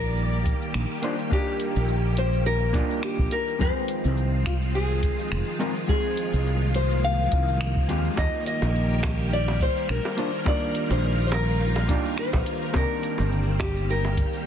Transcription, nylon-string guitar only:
Already playing: A#4
1.33 G4
2.18 C5
2.46 A#4
3.04 G4
3.32 A#4
3.61 C5
4.47 F4
4.75 G#4
5.89 G#4
6.75 C5
7.04 F5
8.18 D#5
8.47 D#5
9.33 D5
9.62 C5
9.90 A#4
10.19 C5
10.48 D5
10.92 C5
11.27 C5
11.33 A#4
12.19 C5
12.76 A#4
13.62 G4
13.90 A#4

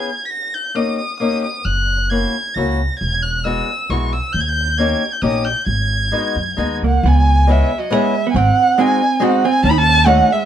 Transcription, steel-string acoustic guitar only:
0.75 A#3 C#4 D#4 G4
1.20 A#3 C#4 D#4 G4
2.11 A#3 C#4 E4 F#4
2.56 A#3 C#4 E4 F#4
3.45 G#3 B3 E4 F#4
3.90 G#3 B3 E4 F#4
4.78 A#3 C#4 D#4 G4
5.22 A#3 C#4 D#4 G4
6.12 G#3 B3 D#4 F#4
6.57 G#3 B3 D#4 F#4
7.47 G#3 B3 C#4 E4
7.90 G#3 B3 C#4 E4
8.78 G#3 C4 D#4 F#4
9.20 G#3 C4 D#4 F#4
10.05 A3 C#4 D#4 F#4

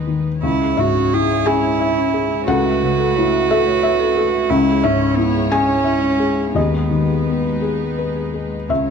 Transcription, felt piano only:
Already playing: D#2 D#3 D#4 B4
0.07 D#3
0.43 C#2
0.77 G#2 E5
1.13 E4
1.46 G#4 G#5
1.80 E5
2.14 G#4
2.48 C#2 F#5
2.82 C#3
3.18 E4
3.50 A4 E5
3.83 E5
4.17 A4
4.50 C#2
4.84 G#2 E5
5.17 E4
5.52 G#4 G#5
5.84 E5
6.20 G#4
6.55 D#2 D#5
6.90 D#3
7.27 B3
7.62 G#4
7.99 B4
8.34 G#4
8.69 C#2 E5

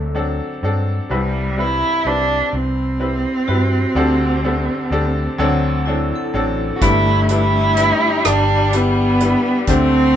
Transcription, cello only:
Already playing: A3
1.14 G3
1.60 E4
2.07 D4
2.55 C4
6.76 F#4
6.83 E4
7.30 E4
8.27 D4
8.75 B3
9.69 C4

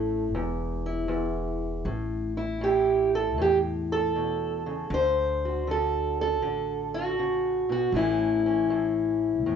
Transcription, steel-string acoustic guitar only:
Already playing: A2 A3 A4
0.35 E2
0.86 E4
1.08 E2
1.86 A2
2.37 E4
2.61 A2 G4
3.15 A4
3.38 A2 G4
3.92 A4
4.16 B2
4.66 C#3
4.90 D3 C5
5.45 F#4
5.67 D3 A4
6.21 A4
6.42 D3
6.94 F#4
7.19 C#3
7.69 B2 F#4
7.94 A2 E3 A3 C#4 E4
8.46 C#4
8.70 A2
9.46 A2

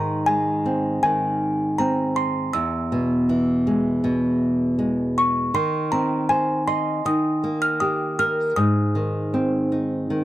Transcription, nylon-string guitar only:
Already playing: G#2 D#3
0.28 G#3
0.66 C4
1.03 D#3
1.79 C4
2.54 E2
2.92 B2
3.29 E3
3.67 G#3
4.04 B2
4.79 G#3
5.54 D#3
5.92 C4
6.30 C5
6.67 D#5
7.05 D#3
7.44 A#3
7.81 G4
8.19 A#4
8.57 G#2
8.95 D#3
9.34 C4
9.72 D#4
10.10 D#3

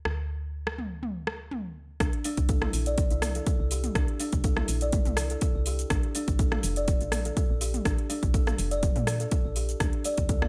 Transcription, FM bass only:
0.06 D2
2.00 C2
2.38 C2
2.74 A#1
3.11 C2
3.60 C2
3.95 C2
4.33 C2
4.69 A#1
5.07 C2
5.55 C2
5.91 A#1
6.28 A#1
6.64 F1
7.01 A#1
7.50 A#1
7.85 A#1
8.23 A#1
8.59 F1
8.96 A#2
9.45 A#1
9.80 D2
10.18 D2

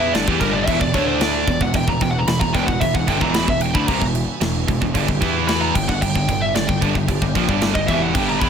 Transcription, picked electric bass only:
Already playing: E2
0.14 G1
0.28 E2
0.41 G1
0.68 E1
0.81 E1
0.94 D2
1.47 E1
1.60 E1
1.74 E1
1.87 E1
2.01 E1
2.27 E1
2.41 E1
2.54 E1
2.68 E1
2.81 E1
2.95 E1
3.08 G1
3.21 E1
3.48 E1
3.75 D2
3.88 C2
4.01 E1
4.41 E1
4.68 E1
4.82 E1
4.95 G1
5.08 G1
5.22 E2
5.75 G1
5.89 G1
6.02 G1
6.15 G1
6.29 G1
6.55 G1
6.69 G1
6.82 G1
6.95 G1
7.09 G1
7.22 G1
7.35 A#1
7.49 G1
7.75 G1
7.89 E1
8.15 G1
8.42 E2

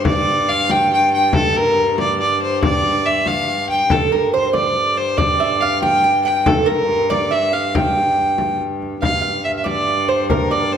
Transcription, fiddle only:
0.06 D5
0.49 F5
0.71 G5
0.93 G5
1.14 G5
1.35 A4
1.56 A#4
2.00 D5
2.20 D5
2.42 C5
2.63 D5
3.06 E5
3.27 F5
3.70 G5
3.91 A4
4.12 A#4
4.33 C5
4.55 D5
4.97 C5
5.18 D5
5.61 F5
5.82 G5
6.25 G5
6.46 A4
6.68 A#4
7.10 D5
7.32 E5
7.53 F5
7.75 G5
9.02 F5
9.45 E5
9.58 E5
9.66 D5
10.08 C5
10.30 A#4
10.51 D5
10.73 C5

